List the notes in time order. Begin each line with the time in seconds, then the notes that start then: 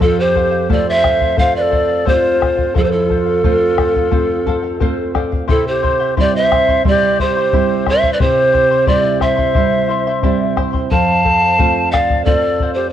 0.00 F2 F4 A4 C5 F5, bombo low
0.20 G4 C5
0.35 A4 C5 F5, bombo low
0.52 C5 F5
0.69 A3 C4 F4 A4 C5 D5 F5, bombo low
0.89 C5 D5 E5
1.02 A4 C5 F5, bombo rim, bombo low
1.20 C5 F5, bombo low
1.37 A3 C4 F4 A4 C5 F5, bombo low
1.56 B4 D5
1.62 A4
1.70 A4 C5 F5, bombo low
1.88 C5 F5
2.05 A3 C4 F4 G4 A4 C5 F5, bombo low
2.14 F4
2.40 A4 C5 F5, bombo rim, bombo low
2.57 C5 F5, bombo low
2.74 F2 F4 A4 C5 F5, bombo low
2.84 A4 C5
2.92 E4 A4
3.05 F4
3.09 A4 C5 F5, bombo low
3.26 C5 F5
3.44 A3 C4 F4 A4 C5 F5, bombo low
3.78 A4 C5 F5, bombo rim, bombo low
3.95 C5 F5, bombo low
4.11 A3 C4 F4 A4 C5 F5, bombo low
4.46 A4 C5 F5, bombo low
4.63 C5 F5
4.80 A3 C4 F4 A4 C5 F5, bombo low
5.15 A4 C5 D5 F5, bombo rim, bombo low
5.32 C5 F5, bombo low
5.48 C3 E4 G4 A4 C5 E5 C6, bombo low
5.68 G4 C5
5.82 E4 C5 E5 C6, bombo low
6.00 E4 E5 C6
6.17 G3 C4 E4 G4 C5 D5 E5 C6, bombo low
6.36 C5 E5
6.51 E4 C5 E5 C6, bombo rim, bombo low
6.68 E4 E5 C6, bombo low
6.84 G3 C4 E4 G4 C5 D5 E5 C6, bombo low
6.90 G4
7.19 E4 G#4 C5 E5 C6, bombo low
7.26 G4
7.37 E4 E5 C6
7.52 G3 C4 E4 G4 C5 E5 C6, bombo low
7.86 E4 C5 E5 C6, bombo rim, bombo low
8.03 E4 E5 C6, bombo low
8.13 B4 D5
8.20 C3 E4 G4 G#4 C5 E5 C6, bombo low
8.26 G4
8.53 E4 C5 E5 C6, bombo low
8.71 E4 E5 C6
8.87 G3 C4 E4 G4 C5 D5 E5 C6, bombo low
9.20 E4 C5 E5 C6, bombo rim, bombo low
9.37 E4 E5 C6, bombo low
9.54 G3 C4 E4 G4 C5 E5 C6, bombo low
9.88 E4 C5 E5 C6
10.07 E4 E5 C6
10.23 G3 C4 E4 G4 C5 D5 E5 C6, bombo low
10.57 E4 C5 E5 C6, bombo rim, bombo low
10.73 E4 E5 C6, bombo low
10.91 F2 A4 C5 F5 A5, bombo low
11.24 A4 C5 F5, bombo low
11.41 C5 F5
11.58 A3 C4 F4 A4 C5 F5, bombo low
11.91 A4 C5 D5 F5, bombo rim, bombo low
12.10 C5 F5, bombo low
12.24 A3 C4 F4 A4 C5 D5 F5, bombo low
12.60 A4 C5 F5, bombo low
12.74 G4 C5 F5
12.79 C5